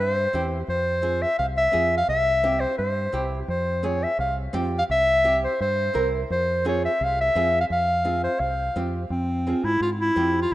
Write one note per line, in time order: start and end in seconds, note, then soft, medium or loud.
0.00 0.26 G2 medium
0.00 0.48 C5 medium
0.33 0.62 E2 medium
0.33 0.58 C4 medium
0.33 0.58 E4 medium
0.33 0.58 G4 medium
0.68 1.24 F2 medium
0.68 1.24 C5 medium
1.02 1.27 C4 medium
1.02 1.27 F4 medium
1.02 1.27 G#4 medium
1.22 1.38 E5 medium
1.39 1.67 C2 medium
1.39 1.47 F5 medium
1.58 1.95 E5 medium
1.72 2.02 F2 medium
1.72 1.97 C4 medium
1.72 1.98 F4 medium
1.72 1.98 G#4 medium
1.98 2.08 F5 medium
2.09 2.65 C2 medium
2.09 2.62 E5 loud
2.43 2.68 C4 medium
2.43 2.68 E4 medium
2.43 2.68 G4 medium
2.60 2.77 C5 medium
2.78 3.07 G2 medium
2.78 3.27 C5 medium
3.12 3.42 C2 medium
3.12 3.38 C4 medium
3.12 3.38 E4 medium
3.12 3.38 G4 medium
3.48 4.05 F2 medium
3.48 3.87 C5 medium
3.83 4.08 C4 medium
3.83 4.08 F4 medium
3.83 4.08 G#4 medium
3.83 4.05 C#5 medium
4.03 4.19 E5 medium
4.19 4.47 C2 medium
4.19 4.36 F5 medium
4.53 4.82 F2 medium
4.53 4.78 C4 medium
4.53 4.78 F4 medium
4.53 4.79 G4 medium
4.79 4.84 F5 loud
4.90 5.46 C2 medium
4.90 5.39 E5 loud
5.24 5.49 C4 medium
5.24 5.49 E4 medium
5.24 5.49 G4 medium
5.44 5.60 C5 medium
5.61 5.88 G2 medium
5.61 6.10 C5 medium
5.94 6.23 C2 medium
5.94 6.19 C4 medium
5.94 6.19 E4 medium
5.94 6.19 A#4 medium
6.30 6.86 F2 medium
6.30 6.63 C5 medium
6.65 6.89 C4 medium
6.65 6.90 F4 medium
6.65 6.90 G#4 medium
6.65 6.83 C#5 medium
6.85 7.05 E5 medium
7.01 7.29 C2 medium
7.01 7.19 F5 medium
7.21 7.58 E5 loud
7.35 7.64 F2 medium
7.35 7.60 C4 medium
7.35 7.60 F4 medium
7.35 7.60 G#4 medium
7.61 7.66 F5 medium
7.70 8.27 F2 medium
7.70 8.20 F5 medium
8.05 8.30 C4 medium
8.05 8.30 F4 medium
8.05 8.30 G#4 medium
8.24 8.41 C5 medium
8.40 8.68 C2 medium
8.40 8.93 F5 medium
8.76 9.04 F2 medium
8.76 9.01 C4 medium
8.76 9.01 F4 medium
8.76 9.01 G4 medium
9.10 9.53 F2 loud
9.10 9.65 C4 medium
9.47 9.71 C4 medium
9.47 9.71 F4 medium
9.47 9.72 G#4 medium
9.64 9.78 G#2 medium
9.64 9.82 E4 medium
9.80 10.09 G#2 medium
9.80 9.90 F4 medium
10.01 10.38 E4 medium
10.16 10.45 F2 medium
10.16 10.41 C4 medium
10.16 10.41 F4 medium
10.16 10.42 G4 medium
10.41 10.54 F4 medium